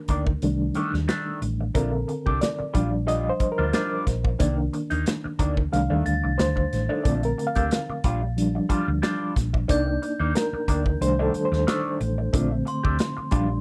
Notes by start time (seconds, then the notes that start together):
Already playing: D#3 A#3 D4 A#4
0.08 D2 D#3 A#3 D4, kick, closed hi-hat
0.27 muted clean electric guitar stroke, kick
0.42 C2 D#3 G3 A3 D4, muted clean electric guitar stroke, closed hi-hat
0.75 D#3 A3 D4, muted fingered electric bass stroke, closed hi-hat
0.94 D#2, muted clean electric guitar stroke, snare
1.08 D#3 A3 D4, snare, closed hi-hat
1.42 A1, muted clean electric guitar stroke, closed hi-hat
1.61 muted clean electric guitar stroke
1.75 A#1 D3 A3 C4 D4 F4 A4 A#4, kick, closed hi-hat
1.92 muted clean electric guitar stroke
2.08 muted clean electric guitar stroke, closed hi-hat
2.26 C2 A3 D4 G4, kick
2.41 D5, muted clean electric guitar stroke, snare, closed hi-hat
2.59 muted clean electric guitar stroke, muted fingered electric bass stroke
2.74 A#1 F3 G3 D4 F4, kick, closed hi-hat
2.92 muted clean electric guitar stroke
3.07 G3 D4 F4 D#5, closed hi-hat
3.29 C5
3.40 muted clean electric guitar stroke, muted fingered electric bass stroke, kick, closed hi-hat
3.52 A#4
3.58 D2 G3 D4 F4
3.73 G3 D4 F4, snare, closed hi-hat
4.06 A#1, muted clean electric guitar stroke, kick, snare, closed hi-hat
4.24 muted clean electric guitar stroke, kick
4.39 C2 D#3 A#3 D4, kick, closed hi-hat
4.58 muted clean electric guitar stroke
4.73 muted clean electric guitar stroke, closed hi-hat
4.90 D#2 D#3 A#3 D#4, closed hi-hat
5.06 muted clean electric guitar stroke, snare, closed hi-hat
5.24 muted clean electric guitar stroke, muted fingered electric bass stroke
5.39 D2 D#3 A#3 D4, kick, closed hi-hat
5.57 muted clean electric guitar stroke, kick
5.72 C2 D#3 G3 A3 D4 F5, muted clean electric guitar stroke, closed hi-hat
5.90 D#2 D#3 A3 D4
6.05 D2 A6, muted clean electric guitar stroke, closed hi-hat
6.24 C2, muted clean electric guitar stroke
6.38 D2 C5, muted clean electric guitar stroke, snare, closed hi-hat
6.56 muted clean electric guitar stroke, kick
6.73 A1, snare, closed hi-hat
6.89 D#3 A3 D4
7.04 A#1 D3 A3 C4 D4 F4 D5, kick, closed hi-hat
7.22 A#4, muted clean electric guitar stroke, closed hi-hat
7.38 muted clean electric guitar stroke, closed hi-hat
7.47 F5
7.55 D2 A3 D4 G4, kick, closed hi-hat
7.71 muted clean electric guitar stroke, snare, closed hi-hat
7.89 muted fingered electric bass stroke, muted clean electric guitar stroke
8.04 A#1 G3 D4 F4, kick, closed hi-hat
8.23 muted clean electric guitar stroke
8.37 F3 G3 D4, closed hi-hat
8.55 muted clean electric guitar stroke
8.69 G3 D4 F4, muted fingered electric bass stroke, kick, closed hi-hat
8.88 D2, muted clean electric guitar stroke
9.02 G3 D4 F4, snare, closed hi-hat
9.36 A#1, muted clean electric guitar stroke, kick, snare, closed hi-hat
9.53 muted clean electric guitar stroke, kick
9.68 C2 D#3 A#3 D4 D#4 D5 G6, kick, closed hi-hat
9.87 muted clean electric guitar stroke
10.02 muted clean electric guitar stroke, closed hi-hat
10.20 D#2 D#3 A#3 D#4
10.35 A#4, muted clean electric guitar stroke, snare, closed hi-hat
10.53 muted fingered electric bass stroke, muted clean electric guitar stroke
10.68 D2 D#3 A#3 D4, kick, closed hi-hat
10.86 muted clean electric guitar stroke, kick
11.00 C2 D#3 G3 A3 D4 C5, muted clean electric guitar stroke, closed hi-hat
11.19 D#3 A3 D4 A4
11.34 muted clean electric guitar stroke, muted fingered electric bass stroke, closed hi-hat
11.45 C5
11.52 D#2, muted clean electric guitar stroke, snare
11.67 D#3 A3 D4, snare, closed hi-hat
12.00 A1, muted clean electric guitar stroke, closed hi-hat
12.18 muted clean electric guitar stroke
12.33 A#1 D3 A3 C4 D4 F4, kick, closed hi-hat
12.51 muted clean electric guitar stroke
12.65 C6, muted clean electric guitar stroke, closed hi-hat
12.83 D2 A3 D4 G4, kick
12.99 muted clean electric guitar stroke, snare, closed hi-hat
13.17 muted clean electric guitar stroke, muted fingered electric bass stroke
13.31 A#1 F3 G3 D4 F4, kick, closed hi-hat
13.49 muted clean electric guitar stroke